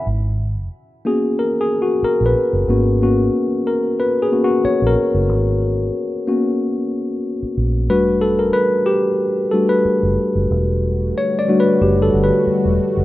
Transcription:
0.07 fingered electric bass G#1
1.05 tine electric piano A#3 B3 C#4 F#4 G#4
1.39 tine electric piano A#4
1.61 tine electric piano G#4
1.82 tine electric piano F#4
2.03 tine electric piano A#4, muted fingered electric bass stroke
2.21 fingered electric bass A#1
2.26 tine electric piano B4
2.53 fingered electric bass F#1
2.68 fingered electric bass G#1, tine electric piano A#3 B3 C#4 F#4
3.02 tine electric piano A#3 B3 C#4 F#4
3.67 tine electric piano A#4
4.00 tine electric piano B4
4.22 tine electric piano G#4
4.32 tine electric piano A#3 B3 C#4 F#4
4.44 tine electric piano F#4
4.65 tine electric piano C#5, muted fingered electric bass stroke
4.82 fingered electric bass A#1
4.87 tine electric piano A#4
5.14 fingered electric bass F#1
5.29 fingered electric bass G#1
6.27 tine electric piano A#3 B3 C#4 F#4
7.42 muted fingered electric bass stroke
7.57 fingered electric bass A#1
7.89 fingered electric bass E1, tine electric piano G3 A3 D4 F#4 B4
8.21 tine electric piano A4
8.39 tine electric piano A#4
8.53 tine electric piano B4
8.86 tine electric piano G4
9.51 tine electric piano G3 A3 D4 F#4 A4
9.69 tine electric piano B4
9.85 muted fingered electric bass stroke
10.03 fingered electric bass F#1
10.35 fingered electric bass F#1
10.49 fingered electric bass E1, analog synth pad D3 G3 A3 F#4
11.18 tine electric piano C#5
11.39 tine electric piano D5
11.48 tine electric piano G3 A3 D4 F#4
11.60 tine electric piano B4
11.81 fingered electric bass F#1, tine electric piano G4
12.02 tine electric piano A4
12.14 fingered electric bass G1
12.24 tine electric piano B4
12.47 muted fingered electric bass stroke
12.65 fingered electric bass E1
12.97 fingered electric bass F#1

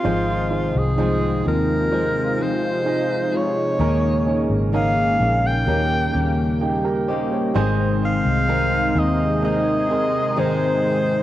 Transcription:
Already playing: alto saxophone F4
0.03 fingered electric bass G#1, steel-string acoustic guitar G#2 D#3 F3 G#3 C4 G#4, grand piano G#2 D#3 D#4 F4 G#4 C5, analog synth pad C3 F3 G#3 D#4 F4
0.50 grand piano D#4 F4 G#4 C5
0.75 fingered electric bass C2, alto saxophone G#4
0.97 steel-string acoustic guitar G#2 D#3 F3 G#3 C4 G#4, grand piano D#4 F4 G#4 C5
1.44 fingered electric bass D#2, steel-string acoustic guitar F3 G#3 C4 G#4
1.48 alto saxophone A#4
1.90 steel-string acoustic guitar F3 G#3 C4 G#4, grand piano D#4 F4 G#4 C5
2.38 steel-string acoustic guitar F3 G#3 C4 G#4
2.42 alto saxophone C5
2.85 grand piano D#4 F4 G#4 D#5
3.32 steel-string acoustic guitar F3 G#3 G#4
3.36 alto saxophone C#5
3.79 fingered electric bass D#2, grand piano A#2 C#4 D#4 G#4 A#4, analog synth pad C#3 A#3 G#4, steel-string acoustic guitar D#3 A#3 C#4 G#4
4.26 grand piano C#4 D#4 G#4 C#5
4.49 fingered electric bass G#1
4.72 steel-string acoustic guitar D#3 A#3 C#4 G#4, grand piano C#4 D#4 G#4 A#4, alto saxophone F5
5.19 fingered electric bass A#1, steel-string acoustic guitar A#3 C#4 G#4
5.46 alto saxophone G5
5.66 fingered electric bass D#2, grand piano A#2 C#4 D#4 G4 A#4, analog synth pad C#3 G3 G4, steel-string acoustic guitar D#3 A#3 C#4 G4
6.13 fingered electric bass D#2, steel-string acoustic guitar A#3 C#4 G4
6.61 grand piano D#4 G4 G5
6.85 grand piano G4 A#4
7.08 steel-string acoustic guitar A#3 C#4 G4, grand piano C5 D#5
7.32 grand piano A#4 C#5
7.54 fingered electric bass G#1, steel-string acoustic guitar G#2 D#3 G#3 C4 D#4 G#4, grand piano G#2 D#3 C4 D#4 G#4 C5, analog synth pad C3 D#3 G#3 D#4 G#4
8.05 alto saxophone F5
8.25 fingered electric bass C2
8.48 steel-string acoustic guitar G#2 D#3 G#3 C4 D#4 G#4, grand piano C4 D#4 G#4 A#4
8.95 fingered electric bass D#2, steel-string acoustic guitar G#3 C4 D#4 G#4, alto saxophone D#5
9.41 steel-string acoustic guitar G#3 C4 D#4 G#4, grand piano C4 D#4 G#4 A#4, alto saxophone D#5
9.89 steel-string acoustic guitar G#3 C4 D#4 G#4, grand piano C4 D#4 G#4 A#4
10.36 steel-string acoustic guitar G#2 D#3 G#3 C4 D#4 G#4, grand piano C4 D#4 G#4 A#4, alto saxophone C5

